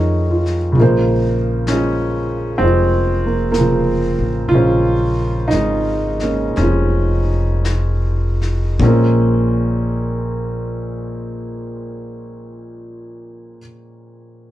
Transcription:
Already playing: upright bass F2, upright piano D#3 F3 G#3 A3 C#4 D#4 G#4
0.31 upright piano F4
0.46 snare
0.72 upright bass A#1, upright piano C#3 F3, brush sweep
0.79 upright piano C#3 F3 G#3 A#3 C5
1.67 upright piano C#4, brush sweep, snare, hi-hat pedal
1.72 upright piano F3 G#3
2.58 upright bass F1, upright piano C4, brush sweep
2.63 upright piano F3 G#3
3.24 upright piano F3 A#3
3.52 upright piano A#3, brush sweep, snare, hi-hat pedal
3.58 upright piano C#3 F3
4.18 upright bass A1
4.49 upright bass A#1, upright piano C#3 F3 F4, brush sweep
4.54 upright piano G#3 C#4 C5
5.48 upright piano D#4, brush sweep, snare, hi-hat pedal
5.52 upright bass G#1, upright piano G#3
6.20 upright piano G#3 A#3 C#4, snare
6.56 upright bass F1, upright piano C#4, brush sweep, snare
6.61 upright piano F3 G#3
7.65 brush sweep, snare, hi-hat pedal
8.42 snare
8.79 upright bass A#1, upright piano A#2 F3 G#3 C4, kick
8.83 upright piano A#3 C#4

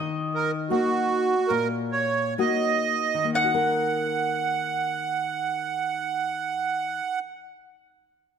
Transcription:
Already playing: mandolin D#5
0.00 nylon-string guitar D#3
0.35 accordion A#4
0.70 nylon-string guitar A#3 D#4 F#4, accordion F#4
1.48 nylon-string guitar A#2, accordion A#4
1.92 accordion C#5
2.38 nylon-string guitar A#3 D#4 F#4, accordion D#5
3.15 nylon-string guitar D#3
3.24 nylon-string guitar A#3
3.34 nylon-string guitar D#4, accordion F#5, mandolin F#5
3.44 nylon-string guitar F#4
3.55 nylon-string guitar A#4

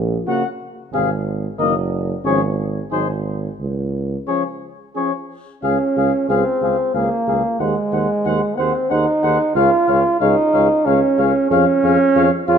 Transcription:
Already playing: tuba A#1
0.27 trombone C#3, french horn A#3, flugelhorn F#4, cornet F#5
0.93 tuba G#1, trombone C3, french horn C4, flugelhorn G#4, cornet F5
1.58 tuba F#1, trombone D#3, french horn A#3, flugelhorn A#4, cornet D#5
2.24 tuba G#1, trombone F3, french horn C#4, flugelhorn G#4, cornet C#5
2.91 tuba G#1, trombone F#3, french horn D#4, flugelhorn G#4, cornet C5
3.60 tuba C#2
4.27 trombone F3, french horn C#4, flugelhorn G#4, cornet C#5
4.95 trombone F3, french horn C#4, flugelhorn G#4, cornet C#5
5.63 tuba C#2, trombone C#4, french horn G#4, flugelhorn G#4, cornet F5
5.96 tuba C#2, french horn G#4, flugelhorn G#4, cornet F5
6.29 tuba C#2, trombone C4, flugelhorn G#4, french horn G#4, cornet F5
6.61 tuba C#2, french horn G#4, flugelhorn G#4, cornet F5
6.94 tuba C#2, trombone A#3, french horn G#4, flugelhorn G#4, cornet F5
7.27 tuba C#2, french horn G#4, flugelhorn G#4, cornet F5
7.59 tuba D#2, trombone G#3, french horn G#4, flugelhorn C5, cornet F#5
7.92 tuba D#2, french horn G#4, flugelhorn C5, cornet F#5
8.25 tuba D#2, french horn G#4, flugelhorn C5, cornet F#5
8.57 tuba D#2, trombone C4, french horn G#4, flugelhorn C5, cornet F#5
8.90 tuba D#2, trombone D#4, french horn G#4, flugelhorn C5, cornet F#5
9.23 tuba D#2, french horn G#4, flugelhorn C5, cornet F#5
9.55 tuba C#2, trombone F4, french horn G#4, flugelhorn C#5, cornet F5
9.87 tuba C#2, french horn G#4, flugelhorn C#5, cornet F5
10.20 tuba C#2, trombone D#4, french horn G#4, flugelhorn C#5, cornet F5
10.53 tuba C#2, french horn G#4, flugelhorn C#5, cornet F5
10.85 tuba C#2, trombone C#4, french horn G#4, flugelhorn C#5, cornet F5
11.18 tuba C#2, french horn G#4, flugelhorn C#5, cornet F5
11.50 tuba F2, trombone C#4, french horn G#4, flugelhorn C#5, cornet F5
11.83 tuba F2, french horn G#4, flugelhorn C#5, cornet F5
12.16 tuba F2, french horn G#4, flugelhorn C#5, cornet F5
12.48 tuba F2, trombone F4, french horn G#4, flugelhorn C#5, cornet F5

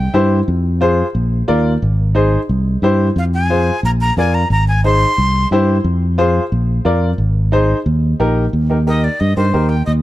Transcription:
Already playing: flute G5
0.14 fingered electric bass G2, upright piano E4 G4 C5
0.48 fingered electric bass F2
0.81 upright piano F4 G#4 C5
1.15 fingered electric bass A#1
1.48 fingered electric bass D#2, upright piano F4 A#4 D5
1.82 fingered electric bass G#1
2.15 upright piano D#4 G#4 C5
2.49 fingered electric bass C2
2.82 fingered electric bass G2, upright piano E4 G4 C5
3.16 fingered electric bass F2, flute F5
3.34 flute G#5
3.50 upright piano F4 G#4 C5
3.83 fingered electric bass A#1, flute A#5
4.01 flute A#5
4.17 fingered electric bass F2, upright piano F4 A#4 D5, flute G#5
4.34 flute A#5
4.50 fingered electric bass G#1, flute A#5
4.68 flute G#5
4.84 upright piano D#4 G#4 C5, flute C6
5.18 fingered electric bass C2
5.51 fingered electric bass G2, upright piano E4 G4 C5
5.84 fingered electric bass F2
6.18 upright piano F4 G#4 C5
6.52 fingered electric bass A#1
6.85 fingered electric bass F2, upright piano F4 A#4 D5
7.18 fingered electric bass G#1
7.52 upright piano D#4 G#4 C5
7.86 fingered electric bass D#2
8.20 fingered electric bass A#1, upright piano D#4 G4 A#4
8.53 fingered electric bass D#2
8.70 upright piano D#4 G4 A#4
8.87 upright piano D#4 G4 A#4, flute D#5
9.04 flute D5
9.20 fingered electric bass G2, flute D#5
9.36 fingered electric bass G2, upright piano D#4 G4 A#4, flute C5
9.54 fingered electric bass D#2, upright piano D#4 G4 A#4
9.69 flute G5
9.86 fingered electric bass D#2, flute D#5

